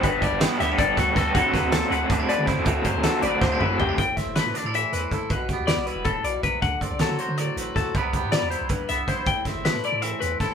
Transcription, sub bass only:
\new Staff \with { instrumentName = "Sub bass" } { \clef bass \time 7/8 \key d \mixolydian \tempo 4 = 159 g,,8 b,,16 g,,8 r16 d,8 g,,8 d,8 d,8 | d,16 r16 d16 d,8. d,8 d,8 r16 d8 d,16 | d,8 fis,16 d,8 r16 a,,8 d,8 a,,8 e,8 | a,,8 r16 g,,8 a,16 r16 a,8. e,8 bes,,16 r16 |
b,,8. e,8 b,,8 e,,8. b,,8 b,,8 | d,8 r16 c,8 d16 r16 d8. a,,8 d,16 r16 | c,8. a,8 e,8 b,,8. c,8 bes,,8 | a,,8 r16 g,,8 a,16 r16 a,8. e,8 a,,16 r16 | }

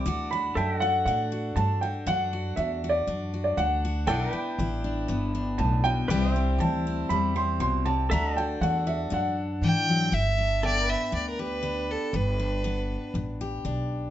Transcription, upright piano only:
\new Staff \with { instrumentName = "Upright piano" } { \time 4/4 \key g \major \tempo 4 = 119 d'''8 b''8 a''8 fis''8 fis''4 a''8 g''8 | fis''4 \tuplet 3/2 { e''4 d''8~ } d''8. d''16 fis''4 | g''2. a''8 g''8~ | g''4 a''4 b''8 c'''8 c'''8 a''8~ |
a''8 g''8 fis''8 e''8 fis''4. r8 | r1 | r1 | }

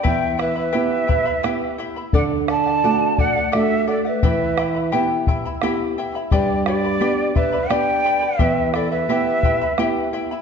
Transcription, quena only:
\new Staff \with { instrumentName = "Quena" } { \time 3/4 \key e \minor \tempo 4 = 86 g''8 e''16 e''4.~ e''16 r8 | fis''8 a''4 fis''8 e''8 d''16 e''16~ | e''4~ e''16 r4. r16 | d''8 d''4 e''8 g''4 |
e''8 d''16 e''4.~ e''16 r8 | }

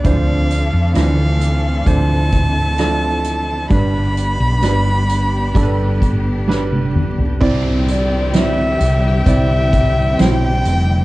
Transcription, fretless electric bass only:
\new Staff \with { instrumentName = "Fretless electric bass" } { \clef bass \time 4/4 \key c \major \tempo 4 = 65 d,8. f,16 d,4 d,2 | g,,8. b,,16 g,,4 g,,2 | c,4. c,8 c,4 b,,8 f,,8 | }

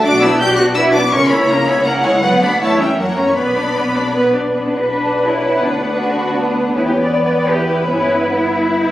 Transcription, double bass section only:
\new Staff \with { instrumentName = "Double bass section" } { \clef bass \time 3/4 \key b \minor \tempo 4 = 162 b,,4 b,,4 b,,4 | cis,4 cis,4 cis,4 | d,4 e,4 fis,4 | b,,4 b,,4 b,,4 |
b,,2. | d,2. | e,2. | g,,2. | }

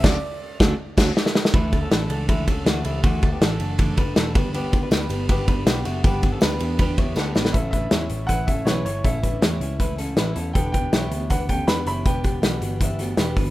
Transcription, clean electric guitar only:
\new Staff \with { instrumentName = "Clean electric guitar" } { \time 4/4 \key d \major \tempo 4 = 160 <cis' a'>8 r4 <cis' a'>8 r8 <cis' a'>8 r4 | <a e'>8. <cis' a'>16 <d' a'>4 <a e'>8 <cis' a'>8 <a fis'>8 <g e'>8 | <a fis'>8. <b g'>16 <d' a'>4. <d' b'>8 <d' a'>8 <d' b'>8 | <b g'>8. <d' b'>16 <d' b'>4 <b g'>8 <d' b'>8 <b g'>8 <a fis'>8 |
<b g'>8. <cis' a'>16 <d' b'>4. <e' cis''>8 <d' a'>8 <d' b'>8 | <cis' a'>8 <d' b'>8 <e' cis''>4 <e' b'>8 <cis' a'>8 <e' b'>8 <e' cis''>8 | <cis' a'>8 <d' b'>8 <e' cis''>4 <e' b'>8 <cis' a'>8 <e' b'>8 <cis' a'>8 | <d' a'>8 <d' b'>8 <e' cis''>4 <d' b'>8 <cis' a'>8 <d' b'>8 <e' cis''>8 |
<d' b'>8 <b g'>8 <b fis'>4 <g e'>8 <a fis'>8 <b g'>8 <d' b'>8 | }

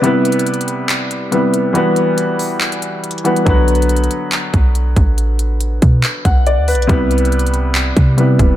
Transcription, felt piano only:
<<
  \new Staff \with { instrumentName = "Felt piano" } { \time 4/4 \key b \phrygian \tempo 4 = 140 r1 | r1 | r1 | r2 r8 fis''8 d''8 b'8 |
r1 | }
  \new Staff \with { instrumentName = "Felt piano" } { \time 4/4 \key b \phrygian <c g b e' b'>2. <c g b e' b'>4 | <e g b fis' b'>2.~ <e g b fis' b'>8 <e g b fis' b'>8 | <d fis b fis' b'>1~ | <d fis b fis' b'>1 |
<c g b e' b'>2. <c g b e' b'>4 | }
>>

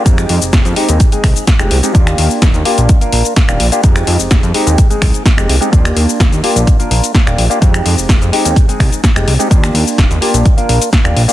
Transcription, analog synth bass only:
\new Staff \with { instrumentName = "Analog synth bass" } { \clef bass \time 4/4 \key ees \major \tempo 4 = 127 f,8 f,16 f,,16 f,,16 f,16 r16 ees,16 r8 c,16 r8 f,,16 c,16 r16 | ees,8 ees,16 r16 ees,,16 ees,16 r16 bes,,16 r8 bes,,16 r8 ees,,16 bes,,16 r16 | f,8 f,16 f,,16 f,,16 f,16 r16 ees,16 r8 c,16 r8 f,,16 c,16 r16 | ees,8 ees,16 r16 ees,,16 ees,16 r16 bes,,16 r8 bes,,16 r8 ees,,16 bes,,16 r16 |
f,8 f,16 f,,16 f,,16 f,16 r16 ees,16 r8 c,16 r8 f,,16 c,16 r16 | ees,8 ees,16 r16 ees,,16 ees,16 r16 bes,,16 r8 bes,,16 r8 ees,,16 bes,,16 r16 | }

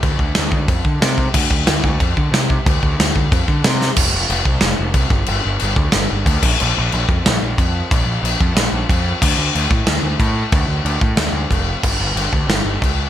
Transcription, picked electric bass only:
\new Staff \with { instrumentName = "Picked electric bass" } { \clef bass \time 4/4 \key d \minor \tempo 4 = 183 d,8 d,8 d,8 d,8 f,8 d8 c4 | d,8 d,8 d,8 d,8 f,8 d8 c4 | d,8 d,8 d,8 d,8 f,8 d8 c4 | f,,8 f,,8 f,,8 c,8 f,,8 f,,8 c,8 g,,8 |
g,,8 g,,8 g,,8 d,8 g,,8 g,,8 d,8 bes,,8 | bes,,8 bes,,8 bes,,8 f,8 bes,,8 bes,,8 f,4 | bes,,8 bes,,8 bes,,8 f,8 bes,,8 bes,,8 f,4 | d,8 d,8 d,8 a,8 d,8 d,8 a,4 |
d,8 d,8 d,8 a,8 d,8 d,8 f,,4 | g,,8 g,,8 g,,8 d,8 g,,8 g,,8 cis,4 | }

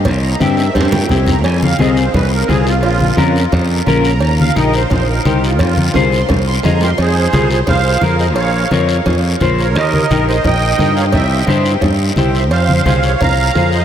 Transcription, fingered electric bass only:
\new Staff \with { instrumentName = "Fingered electric bass" } { \clef bass \time 4/4 \key f \minor \tempo 4 = 173 c,4 g,4 g,4 c,4 | f,4 c,4 c,4 c,4 | bes,,4 f,4 f,4 bes,,4 | ees,4 bes,,4 bes,,4 c,4 |
f,4 c,4 c,4 f,4 | f,4 c,4 c,4 f,4 | bes,,4 f,4 f,4 bes,,4 | ees,4 bes,,4 bes,,4 g,4 |
c,4 g,4 g,4 c,4 | f,4 c,4 c,4 f,4 | }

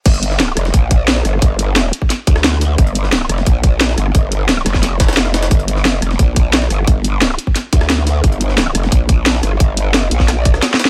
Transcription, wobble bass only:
\new Staff \with { instrumentName = "Wobble bass" } { \clef bass \time 4/4 \key g \minor \tempo 4 = 176 g,,4. f,,8 bes,,4. g,,8 | g,,4. r4 d,4. | g,,4. f,,8 bes,,4. g,,8 | g,,4. f,,2~ f,,8 |
g,,4. f,,8 bes,,4. g,,8 | g,,4. r4 d,4. | g,,4. f,,8 bes,,4. g,,8 | g,,4. bes,,4. r4 | }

